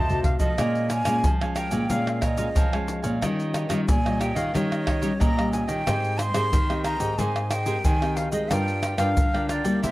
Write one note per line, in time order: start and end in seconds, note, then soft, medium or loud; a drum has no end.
0.00 0.34 C3 medium
0.00 0.55 C3 medium
0.00 0.23 A5 medium
0.09 0.53 A3 medium
0.09 0.53 D#4 medium
0.09 0.54 F#4 medium
0.09 0.39 A4 soft
0.09 0.39 C5 soft
0.09 0.38 D#5 soft
0.09 surdo medium
0.09 pandeiro soft
0.09 shaker soft
0.24 0.39 F5 medium
0.24 pandeiro medium
0.24 surdo medium
0.39 0.55 F3 medium
0.39 0.56 A4 soft
0.39 0.56 C5 soft
0.39 0.55 D#5 soft
0.39 0.91 D#5 medium
0.39 pandeiro medium
0.39 shaker medium
0.39 surdo loud
0.58 1.21 A#2 medium
0.58 1.01 A#2 loud
0.58 0.89 G#3 soft
0.58 0.89 C#4 medium
0.58 0.89 F4 medium
0.58 0.88 A#4 medium
0.58 0.89 C#5 medium
0.58 0.90 F5 medium
0.58 0.90 G#5 medium
0.58 pandeiro medium
0.58 tamborim medium
0.58 shaker medium
0.58 surdo medium
0.75 pandeiro soft
0.75 shaker soft
0.89 1.04 A#4 soft
0.89 1.04 C#5 medium
0.89 1.04 F5 soft
0.89 1.29 G#5 medium
0.89 1.05 G#5 soft
0.89 pandeiro medium
0.89 tamborim medium
0.89 shaker medium
1.05 1.21 A#2 medium
1.05 1.34 G#3 medium
1.05 1.35 C#4 medium
1.05 1.35 F4 medium
1.05 1.15 A#4 medium
1.05 1.15 C#5 medium
1.05 1.16 F5 medium
1.05 1.16 G#5 medium
1.05 pandeiro medium
1.05 tamborim medium
1.05 shaker medium
1.24 1.87 F3 soft
1.24 1.67 F3 medium
1.24 pandeiro medium
1.24 shaker medium
1.24 surdo loud
1.41 1.69 G#3 medium
1.41 1.69 C#4 medium
1.41 1.69 F4 medium
1.41 1.55 C#5 soft
1.41 1.56 F5 soft
1.41 1.56 G#5 medium
1.41 pandeiro soft
1.41 tamborim medium
1.41 shaker soft
1.56 1.72 A#4 medium
1.56 1.72 C#5 medium
1.56 1.71 F5 medium
1.56 1.92 G5 medium
1.56 1.70 G#5 medium
1.56 pandeiro medium
1.56 tamborim medium
1.56 shaker medium
1.71 1.87 A#2 medium
1.71 1.84 G#3 medium
1.71 1.84 C#4 medium
1.71 1.84 F4 medium
1.71 1.88 C#5 soft
1.71 1.88 F5 soft
1.71 1.87 G#5 soft
1.71 pandeiro medium
1.71 shaker medium
1.89 2.46 A#2 medium
1.89 2.53 A#2 medium
1.89 2.21 G#3 medium
1.89 2.22 C#4 medium
1.89 2.22 F4 medium
1.89 2.20 A#4 medium
1.89 2.21 C#5 medium
1.89 2.23 F5 medium
1.89 2.21 F5 medium
1.89 2.22 G#5 medium
1.89 pandeiro medium
1.89 shaker medium
1.89 surdo medium
2.07 pandeiro soft
2.07 tamborim medium
2.07 shaker soft
2.21 2.36 A#4 medium
2.21 2.36 C#5 medium
2.21 2.89 D#5 medium
2.21 2.37 F5 soft
2.21 2.37 G#5 medium
2.21 pandeiro medium
2.21 tamborim medium
2.21 shaker medium
2.21 surdo medium
2.37 2.67 G#3 medium
2.37 2.67 C#4 medium
2.37 2.67 F4 medium
2.37 2.48 A#4 medium
2.37 2.48 C#5 medium
2.37 2.48 F5 medium
2.37 2.48 G#5 medium
2.37 pandeiro medium
2.37 shaker medium
2.55 2.98 F3 medium
2.55 3.19 F3 medium
2.55 2.71 A#4 medium
2.55 2.71 C#5 medium
2.55 2.72 F5 medium
2.55 2.71 G#5 medium
2.55 pandeiro medium
2.55 shaker medium
2.55 surdo loud
2.72 3.18 G#3 medium
2.72 3.18 C#4 medium
2.72 3.18 F4 medium
2.72 3.03 C#5 soft
2.72 3.02 F5 soft
2.72 3.01 G#5 soft
2.72 pandeiro soft
2.72 tamborim medium
2.72 shaker soft
2.88 pandeiro medium
2.88 shaker medium
3.02 3.19 A#2 medium
3.02 3.20 C#5 soft
3.02 3.20 F5 soft
3.02 3.19 G#5 soft
3.02 pandeiro medium
3.02 shaker medium
3.21 3.85 D#3 medium
3.21 3.65 D#3 medium
3.21 3.67 G3 medium
3.21 3.67 C#4 medium
3.21 3.53 D#4 medium
3.21 3.67 F4 medium
3.21 3.53 G4 medium
3.21 3.54 C#5 medium
3.21 3.54 D#5 medium
3.21 pandeiro medium
3.21 tamborim medium
3.21 shaker medium
3.21 surdo medium
3.40 pandeiro soft
3.40 shaker soft
3.54 3.68 D#4 soft
3.54 3.69 G4 soft
3.54 3.69 C#5 soft
3.54 3.69 D#5 soft
3.54 pandeiro medium
3.54 tamborim medium
3.54 shaker medium
3.69 3.85 D#3 medium
3.69 3.99 G3 medium
3.69 3.99 C#4 medium
3.69 3.79 D#4 medium
3.69 3.99 F4 medium
3.69 3.80 G4 medium
3.69 3.80 C#5 medium
3.69 3.80 D#5 medium
3.69 pandeiro medium
3.69 tamborim medium
3.69 shaker medium
3.88 4.31 A#2 medium
3.88 4.51 A#2 medium
3.88 4.22 G#5 medium
3.88 pandeiro medium
3.88 shaker medium
3.88 surdo loud
4.05 4.50 G3 medium
4.05 4.50 C#4 medium
4.05 4.50 F4 medium
4.05 4.19 G4 soft
4.05 4.19 C#5 soft
4.05 4.20 D#5 medium
4.05 pandeiro soft
4.05 tamborim medium
4.05 shaker soft
4.19 4.36 D#4 medium
4.19 4.36 G4 medium
4.19 4.35 C#5 medium
4.19 4.34 D#5 medium
4.19 4.38 G5 medium
4.19 pandeiro medium
4.19 tamborim medium
4.19 shaker medium
4.35 4.51 D#3 medium
4.35 4.53 G4 soft
4.35 4.52 C#5 soft
4.35 4.52 D#5 medium
4.35 4.56 F5 medium
4.35 pandeiro medium
4.35 shaker medium
4.54 5.11 D#3 medium
4.54 5.17 D#3 medium
4.54 4.99 G3 medium
4.54 4.99 C#4 medium
4.54 4.84 D#4 medium
4.54 4.99 F4 medium
4.54 4.85 G4 medium
4.54 5.22 C#5 medium
4.54 4.86 C#5 medium
4.54 4.86 D#5 medium
4.54 pandeiro medium
4.54 shaker medium
4.54 surdo medium
4.72 pandeiro soft
4.72 tamborim medium
4.72 shaker soft
4.86 5.00 D#4 soft
4.86 5.00 G4 medium
4.86 5.01 C#5 medium
4.86 5.01 D#5 soft
4.86 pandeiro medium
4.86 tamborim medium
4.86 surdo medium
5.01 5.31 G3 medium
5.01 5.31 C#4 medium
5.01 5.12 D#4 medium
5.01 5.31 F4 medium
5.01 5.12 G4 medium
5.01 5.12 C#5 medium
5.01 5.12 D#5 medium
5.01 pandeiro medium
5.01 shaker medium
5.20 5.63 A#2 medium
5.20 5.84 A#2 medium
5.20 5.35 D#4 medium
5.20 5.36 G4 medium
5.20 5.36 C#5 medium
5.20 5.36 D#5 medium
5.20 5.51 A#5 medium
5.20 pandeiro medium
5.20 shaker medium
5.20 surdo loud
5.37 5.82 G3 medium
5.37 5.82 C#4 medium
5.37 5.82 F4 medium
5.37 5.68 G4 soft
5.37 5.67 C#5 soft
5.37 5.66 D#5 soft
5.37 pandeiro soft
5.37 tamborim medium
5.37 shaker soft
5.52 5.69 G#5 medium
5.52 pandeiro medium
5.52 shaker medium
5.68 5.83 D#3 medium
5.68 5.85 G4 soft
5.68 5.84 C#5 soft
5.68 5.84 D#5 soft
5.68 6.20 G5 medium
5.68 pandeiro medium
5.68 shaker medium
5.86 6.29 G#2 loud
5.86 6.49 G#3 medium
5.86 6.17 C4 medium
5.86 6.18 G4 medium
5.86 6.17 G#4 medium
5.86 6.18 A#4 medium
5.86 6.18 C5 medium
5.86 6.19 D#5 medium
5.86 6.19 G5 medium
5.86 pandeiro medium
5.86 tamborim medium
5.86 shaker medium
5.86 surdo medium
6.04 pandeiro soft
6.04 shaker soft
6.18 6.33 G#4 soft
6.18 6.34 C5 soft
6.18 6.34 D#5 soft
6.18 6.34 G5 soft
6.18 6.84 C6 loud
6.18 pandeiro medium
6.18 tamborim medium
6.18 shaker medium
6.34 6.49 G#2 medium
6.34 6.63 C4 medium
6.34 6.63 G4 medium
6.34 6.44 G#4 medium
6.34 6.63 A#4 medium
6.34 6.45 C5 medium
6.34 6.45 D#5 medium
6.34 6.45 G5 medium
6.34 pandeiro medium
6.34 tamborim medium
6.34 shaker medium
6.53 7.15 D#3 medium
6.53 6.95 D#3 loud
6.53 pandeiro medium
6.53 shaker medium
6.53 surdo loud
6.69 6.97 C4 medium
6.69 6.97 G4 medium
6.69 6.98 A#4 medium
6.69 6.84 C5 soft
6.69 6.84 D#5 soft
6.69 6.85 G5 medium
6.69 pandeiro soft
6.69 tamborim medium
6.69 shaker soft
6.84 7.00 G#4 medium
6.84 7.01 C5 medium
6.84 7.00 D#5 medium
6.84 6.99 G5 medium
6.84 7.20 A#5 loud
6.84 pandeiro medium
6.84 tamborim medium
6.84 shaker medium
7.00 7.15 G#2 medium
7.00 7.12 C4 medium
7.00 7.12 G4 medium
7.00 7.13 A#4 medium
7.00 7.17 C5 soft
7.00 7.17 D#5 soft
7.00 7.16 G5 medium
7.00 pandeiro medium
7.00 shaker medium
7.18 7.75 G#2 medium
7.18 7.81 G#3 medium
7.18 7.49 C4 medium
7.18 7.50 G#4 medium
7.18 7.50 A#4 medium
7.18 7.51 C5 medium
7.18 7.51 D#5 medium
7.18 7.52 G#5 loud
7.18 pandeiro medium
7.18 shaker medium
7.18 surdo medium
7.36 pandeiro soft
7.36 tamborim medium
7.36 shaker soft
7.51 7.65 G#4 soft
7.51 7.65 C5 medium
7.51 7.66 D#5 medium
7.51 7.86 G5 medium
7.51 7.66 G5 soft
7.51 pandeiro medium
7.51 tamborim medium
7.51 shaker medium
7.66 7.95 C4 medium
7.66 7.95 G4 medium
7.66 7.76 G#4 medium
7.66 7.95 A#4 medium
7.66 7.77 C5 medium
7.66 7.77 D#5 medium
7.66 7.77 G5 medium
7.66 pandeiro medium
7.66 shaker medium
7.84 8.47 D#3 medium
7.84 8.27 D#3 medium
7.84 8.00 G#4 medium
7.84 8.00 C5 medium
7.84 8.01 D#5 medium
7.84 8.01 G5 medium
7.84 8.18 G#5 medium
7.84 pandeiro medium
7.84 shaker medium
7.84 surdo loud
8.02 8.46 C4 medium
8.02 8.46 G4 medium
8.02 8.46 A#4 medium
8.02 8.33 C5 soft
8.02 8.32 D#5 soft
8.02 8.31 G5 soft
8.02 pandeiro soft
8.02 tamborim medium
8.02 shaker soft
8.16 8.31 F5 medium
8.16 pandeiro medium
8.16 shaker medium
8.32 8.47 G#3 medium
8.32 8.50 C5 soft
8.32 8.53 D#5 medium
8.32 8.49 D#5 soft
8.32 8.49 G5 soft
8.32 pandeiro medium
8.32 shaker medium
8.51 8.93 G2 medium
8.51 9.14 G3 medium
8.51 8.82 D4 medium
8.51 8.81 F4 medium
8.51 8.82 F4 medium
8.51 8.82 A#4 medium
8.51 8.83 D5 medium
8.51 9.00 G5 loud
8.51 8.83 G5 medium
8.51 pandeiro medium
8.51 tamborim medium
8.51 shaker medium
8.51 surdo medium
8.68 pandeiro soft
8.68 shaker soft
8.82 8.97 F4 soft
8.82 8.98 A#4 soft
8.82 8.98 D5 soft
8.82 8.99 G5 soft
8.82 pandeiro medium
8.82 tamborim medium
8.82 shaker medium
8.98 9.13 G2 medium
8.98 9.27 D4 medium
8.98 9.08 F4 medium
8.98 9.27 F4 medium
8.98 9.09 A#4 medium
8.98 9.28 A#4 medium
8.98 9.09 D5 medium
8.98 9.49 F5 medium
8.98 9.09 G5 medium
8.98 pandeiro medium
8.98 tamborim medium
8.98 shaker medium
9.17 9.59 D3 medium
9.17 9.80 D3 medium
9.17 pandeiro medium
9.17 shaker medium
9.17 surdo loud
9.34 9.62 D4 medium
9.34 9.62 F4 medium
9.34 9.62 A#4 medium
9.34 9.48 A#4 soft
9.34 9.49 D5 medium
9.34 9.49 G5 medium
9.34 pandeiro soft
9.34 tamborim medium
9.34 shaker soft
9.49 9.65 F4 medium
9.49 9.65 A#4 medium
9.49 9.80 D5 medium
9.49 9.64 D5 medium
9.49 9.63 G5 medium
9.49 pandeiro medium
9.49 tamborim medium
9.49 shaker medium
9.64 9.79 G3 medium
9.64 9.91 A#3 medium
9.64 9.91 C#4 medium
9.64 9.91 E4 medium
9.64 9.82 A#4 soft
9.64 9.81 D5 soft
9.64 9.81 G5 soft
9.64 pandeiro medium
9.64 shaker medium
9.82 9.91 C3 medium
9.82 9.91 E4 medium
9.82 9.91 A#4 medium
9.82 9.91 C5 medium
9.82 9.91 E5 medium
9.82 pandeiro medium
9.82 shaker medium
9.82 surdo medium